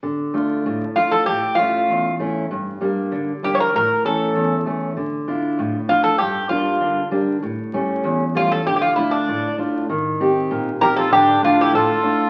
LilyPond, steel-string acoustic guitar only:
\new Staff \with { instrumentName = "Steel-string acoustic guitar" } { \time 2/4 \key d \minor \tempo 4 = 98 d8 <a d' f'>8 a,8 <a d' f'>8 | a,8 <a cis' e''>8 e,8 <a cis' e'>8 | g,8 <g bes d'>8 d8 <g bes d'>8 | a,8 <e a cis'>8 e,8 <e a cis'>8 |
d8 <d' e' f'>8 a,8 <d' e' f'>8 | g,8 <g bes d'>8 d8 <g bes d'>8 | a,8 <g a cis'>8 e,8 <g a cis'>8 | d8 <a d' f'>8 a,8 <a d' f'>8 |
ees8 <c' ees' g'>8 bes,8 <c' ees' g'>8 | d8 <a d' f'>8 a,8 <a d' f'>8 | }